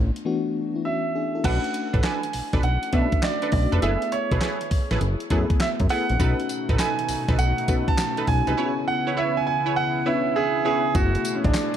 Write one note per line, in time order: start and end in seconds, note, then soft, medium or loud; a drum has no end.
0.00 0.11 A1 medium
0.00 0.25 A3 medium
0.00 0.26 B3 medium
0.00 0.26 D4 medium
0.00 0.28 F4 loud
0.16 closed hi-hat medium
0.25 1.22 E3 medium
0.25 1.23 A3 medium
0.25 0.55 B3 medium
0.25 0.56 D4 medium
0.25 0.56 F#4 loud
0.75 0.85 B3 soft
0.75 0.85 E4 medium
0.85 1.14 C#4 medium
0.85 1.14 F#4 medium
0.85 1.46 E5 medium
1.15 1.34 D4 medium
1.15 1.34 G#4 medium
1.35 1.63 E4 medium
1.35 1.63 A4 medium
1.44 1.59 B1 loud
1.44 2.30 A3 medium
1.44 1.60 D4 loud
1.44 2.31 F#4 medium
1.44 1.61 A4 loud
1.44 1.61 B4 loud
1.44 2.06 F#5 loud
1.44 kick loud
1.44 closed hi-hat medium
1.44 crash loud
1.64 closed hi-hat medium
1.74 closed hi-hat medium
1.93 2.01 A1 loud
1.93 2.02 D4 medium
1.93 2.02 A4 medium
1.93 2.02 B4 medium
1.93 kick medium
1.93 closed hi-hat medium
2.04 2.20 D4 medium
2.04 2.20 A4 medium
2.04 2.20 B4 medium
2.04 2.65 G#5 medium
2.04 snare loud
2.04 clap medium
2.04 closed hi-hat medium
2.23 closed hi-hat medium
2.33 2.42 B1 soft
2.33 open hi-hat medium
2.53 2.61 B1 medium
2.53 2.62 D4 medium
2.53 2.62 A4 medium
2.53 2.62 B4 medium
2.53 kick medium
2.53 snare medium
2.53 closed hi-hat medium
2.63 2.78 B1 loud
2.63 2.91 F#5 medium
2.63 closed hi-hat medium
2.83 closed hi-hat medium
2.93 3.08 B2 loud
2.93 3.39 A3 medium
2.93 3.39 C#4 medium
2.93 3.09 D4 medium
2.93 3.40 D4 medium
2.93 3.40 F#4 medium
2.93 3.09 A4 medium
2.93 3.09 B4 medium
2.93 3.24 E5 medium
2.93 kick medium
2.93 closed hi-hat medium
3.12 kick medium
3.12 closed hi-hat medium
3.22 3.51 D5 medium
3.22 snare loud
3.22 clap loud
3.22 closed hi-hat medium
3.42 3.51 D4 medium
3.42 3.51 A4 medium
3.42 3.51 B4 medium
3.42 closed hi-hat soft
3.52 3.67 B1 loud
3.52 3.76 A3 medium
3.52 3.76 C#4 medium
3.52 3.77 D4 medium
3.52 3.77 F#4 medium
3.52 3.80 D5 medium
3.52 kick medium
3.52 open hi-hat medium
3.72 3.80 F1 loud
3.72 3.80 D4 medium
3.72 3.81 A4 medium
3.72 3.81 B4 medium
3.72 closed hi-hat soft
3.82 3.97 F#1 loud
3.82 4.68 A3 medium
3.82 4.68 B3 medium
3.82 3.98 E4 loud
3.82 4.68 E4 medium
3.82 3.98 G#4 medium
3.82 4.68 G#4 medium
3.82 3.99 A4 medium
3.82 3.99 B4 loud
3.82 4.13 E5 medium
3.82 closed hi-hat medium
4.02 closed hi-hat medium
4.12 5.57 C#5 medium
4.12 closed hi-hat medium
4.31 4.39 B1 loud
4.31 4.40 E4 medium
4.31 4.40 G#4 medium
4.31 4.40 A4 medium
4.31 4.40 B4 medium
4.31 kick medium
4.31 closed hi-hat medium
4.41 4.58 E4 medium
4.41 4.58 G#4 medium
4.41 4.58 A4 medium
4.41 4.58 B4 medium
4.41 snare loud
4.41 clap medium
4.41 closed hi-hat medium
4.61 closed hi-hat medium
4.71 4.80 A1 soft
4.71 kick medium
4.71 open hi-hat medium
4.91 4.99 A1 medium
4.91 4.99 E4 medium
4.91 4.99 G#4 medium
4.91 4.99 A4 medium
4.91 4.99 B4 medium
4.91 snare medium
4.91 closed hi-hat medium
5.01 5.16 F#1 loud
5.01 closed hi-hat medium
5.20 closed hi-hat medium
5.30 5.46 F#2 loud
5.30 5.77 A3 medium
5.30 5.77 B3 medium
5.30 5.47 E4 medium
5.30 5.77 E4 medium
5.30 5.47 G#4 medium
5.30 5.77 G#4 loud
5.30 5.47 A4 medium
5.30 5.47 B4 medium
5.30 kick medium
5.30 closed hi-hat medium
5.50 kick loud
5.50 closed hi-hat medium
5.60 5.68 E5 loud
5.60 snare loud
5.60 clap medium
5.60 closed hi-hat medium
5.80 5.88 F#2 loud
5.80 kick medium
5.80 closed hi-hat medium
5.89 6.14 A3 medium
5.89 6.14 B3 medium
5.89 6.06 E4 medium
5.89 6.14 E4 medium
5.89 6.06 G#4 medium
5.89 6.15 G#4 medium
5.89 6.06 A4 medium
5.89 6.06 B4 medium
5.89 6.75 F#5 loud
5.89 open hi-hat medium
6.09 6.17 A#1 loud
6.09 closed hi-hat soft
6.19 6.35 B1 loud
6.19 8.55 B2 medium
6.19 7.05 A3 medium
6.19 8.55 A3 medium
6.19 7.06 C#4 medium
6.19 6.36 D#4 medium
6.19 8.55 D#4 medium
6.19 7.06 D#4 medium
6.19 7.06 F#4 medium
6.19 6.36 A4 loud
6.19 6.36 B4 loud
6.19 kick loud
6.19 closed hi-hat medium
6.19 tambourine medium
6.40 closed hi-hat medium
6.49 closed hi-hat medium
6.49 tambourine medium
6.69 6.77 A1 medium
6.69 6.78 D#4 medium
6.69 6.78 A4 medium
6.69 6.78 B4 medium
6.69 kick medium
6.69 closed hi-hat medium
6.79 6.95 D#4 medium
6.79 6.96 A4 medium
6.79 6.96 B4 medium
6.79 7.41 G#5 loud
6.79 snare loud
6.79 clap medium
6.79 closed hi-hat medium
6.79 tambourine medium
6.99 closed hi-hat medium
7.08 7.17 B1 soft
7.08 open hi-hat medium
7.08 tambourine medium
7.28 7.36 B1 medium
7.28 7.37 D#4 medium
7.28 7.37 A4 medium
7.28 7.37 B4 medium
7.28 kick medium
7.28 snare medium
7.28 closed hi-hat medium
7.39 7.54 B1 loud
7.39 7.90 F#5 loud
7.39 closed hi-hat medium
7.39 tambourine medium
7.58 closed hi-hat medium
7.68 7.83 B2 loud
7.68 8.14 A3 medium
7.68 8.15 C#4 medium
7.68 7.84 D#4 medium
7.68 8.15 D#4 medium
7.68 8.15 F#4 medium
7.68 7.85 A4 medium
7.68 7.85 B4 medium
7.68 kick loud
7.68 closed hi-hat medium
7.68 tambourine medium
7.88 8.29 A5 loud
7.88 kick medium
7.88 closed hi-hat medium
7.98 snare loud
7.98 clap loud
7.98 closed hi-hat medium
7.98 tambourine loud
8.17 8.26 D#4 medium
8.17 8.26 A4 medium
8.17 8.26 B4 medium
8.17 closed hi-hat medium
8.27 8.43 B1 medium
8.27 8.52 A3 medium
8.27 8.52 C#4 medium
8.27 8.52 D#4 medium
8.27 8.53 F#4 medium
8.27 8.83 G#5 loud
8.27 kick medium
8.27 open hi-hat medium
8.47 8.55 C2 medium
8.47 8.56 D#4 medium
8.47 8.56 A4 medium
8.47 8.56 B4 medium
8.47 closed hi-hat medium
8.57 10.93 C#3 medium
8.57 10.93 B3 medium
8.57 9.43 B3 medium
8.57 9.44 C#4 medium
8.57 8.73 E4 medium
8.57 10.93 E4 medium
8.57 9.44 E4 medium
8.57 8.67 F#4 medium
8.57 8.74 B4 medium
8.57 8.74 C#5 loud
8.65 9.47 G#4 medium
8.88 9.18 F#5 loud
9.07 9.15 E4 medium
9.07 9.15 B4 medium
9.07 9.15 C#5 medium
9.17 9.33 E4 medium
9.17 9.33 B4 medium
9.17 9.33 C#5 medium
9.17 9.37 E5 loud
9.37 9.45 G#5 loud
9.47 9.77 G#5 loud
9.66 9.74 E4 medium
9.66 9.74 B4 medium
9.66 9.75 C#5 medium
9.76 10.07 F#5 loud
10.06 10.52 B3 medium
10.06 10.52 C#4 medium
10.06 10.15 D4 medium
10.06 10.22 E4 medium
10.06 10.22 B4 medium
10.06 10.53 B4 medium
10.06 10.22 C#5 medium
10.06 10.34 E5 medium
10.36 10.64 G#4 loud
10.36 10.82 E5 medium
10.65 10.89 B3 medium
10.65 10.89 C#4 medium
10.65 10.81 E4 medium
10.65 10.89 E4 medium
10.65 10.96 G#4 loud
10.65 10.90 G#4 medium
10.65 10.81 B4 medium
10.65 10.82 C#5 medium
10.95 11.17 F#1 loud
10.95 11.77 B2 medium
10.95 11.77 A3 medium
10.95 11.77 B3 medium
10.95 11.77 E4 medium
10.95 11.37 F#4 loud
10.95 11.77 G#4 medium
10.95 kick loud
10.95 closed hi-hat medium
10.95 tambourine medium
11.15 closed hi-hat medium
11.25 closed hi-hat medium
11.25 tambourine medium
11.35 11.45 C#4 medium
11.44 11.52 A1 loud
11.44 11.77 D4 medium
11.44 kick loud
11.44 closed hi-hat medium
11.54 snare loud
11.54 clap loud
11.54 closed hi-hat medium
11.54 tambourine medium